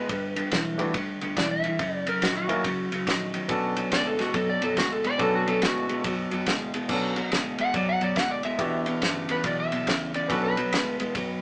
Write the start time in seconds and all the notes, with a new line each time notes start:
Already playing: B4
0.09 G1 G2 D3, kick, ride
0.36 G2 D3, ride
0.51 B1 G2 E3, snare, ride
0.78 G2 E3 A3 D4 F#4 G4 B4, ride
0.94 D2 G2 D3, kick, ride
1.21 D2 G2 D3, ride
1.37 B1 G2 E3 D5, kick, snare, ride
1.51 E5
1.64 G2 E3, ride
1.79 F#1 F#2 C#3, kick, ride
1.95 D5
2.06 F#2 C#3 A#4, ride
2.22 A#1 F#2 D#3 F#4, snare, ride
2.37 F#4
2.48 F#2 D#3 A#3 C#4 E4 F#4 A#4, ride
2.64 C#2 F#2 C#3, kick, ride
2.91 C#2 F#2 C#3, ride
3.07 A#1 F#2 D#3, kick, snare, ride
3.34 F#2 D#3, ride
3.48 B1 B2 F#3 B3 C#4 D4 F#4 A4, kick, ride
3.76 B2 F#3, ride
3.91 D2 B2 G#3 D5, snare, ride
4.07 A4
4.19 B2 G#3 F#4, snare, ride
4.34 F#2 B2 F#3 A4, kick, ride
4.50 D5
4.62 F#2 B2 F#3 A4, ride
4.77 D2 B2 G#3 F#4, kick, snare, ride
4.92 A4
5.04 B2 G#3 D5, ride
5.18 B1 B2 F#3 B3 C#4 D4 F#4 A4, kick, ride
5.35 F#4
5.47 B2 F#3 A4, ride
5.62 D2 B2 G#3 F#4, snare, ride
5.89 B2 G#3, ride
6.04 F#2 B2 F#3, kick, ride
6.31 F#2 B2 F#3, ride
6.46 D2 B2 G#3, kick, snare, ride
6.74 B2 G#3, ride
6.88 B1 B2 F#3 B3 C#4 D4 F#4 A4, kick, crash
7.16 B2 F#3, ride
7.32 D2 B2 G#3, snare, ride
7.58 B2 G#3 F#5, ride
7.74 F#2 B2 F#3 D5, kick, ride
7.89 F#5
8.01 F#2 B2 F#3 D5, ride
8.16 D2 B2 G#3 F#5, kick, snare, ride
8.31 D5
8.43 B2 G#3 E5, ride
8.58 E1 E2 B2 B3 D4 E4 F#4 G4, kick, ride
8.86 E2 B2, ride
9.02 G1 E2 C#3, snare, ride
9.29 E2 C#3 B4, ride
9.44 B1 E2 B2 D5, kick, ride
9.60 E5
9.72 B1 E2 B2, ride
9.87 C#2 E2 C#3, kick, snare, ride
10.14 E2 C#3 D5, ride
10.28 B1 B2 F#3 B3 C#4 D4 F#4 A4 B4, kick, ride
10.45 B4
10.57 B2 F#3, ride
10.72 D2 B2 G#3, snare, ride
11.00 B2 G#3, ride
11.15 F#2 B2 F#3, kick, ride